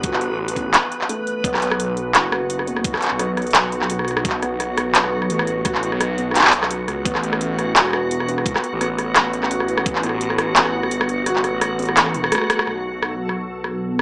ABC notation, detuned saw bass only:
X:1
M:4/4
L:1/16
Q:"Swing 16ths" 1/4=171
K:Amix
V:1 name="Detuned saw bass" clef=bass
G,,,3 A,,,4- A,,, z8 | B,,,8 F,,,8- | F,,, z2 B,,,12- B,,,- | B,,,3 B,,,8- B,,, A,,,4- |
A,,,3 B,,,8- B,,,3 C,,2 | A,,,8 E,,,8- | E,,, z2 A,,,12- A,,,- | A,,,3 A,,,8- A,,, G,,,4- |
G,,,3 A,,,6- A,,, E,,,2 z4 | B,,,16 |]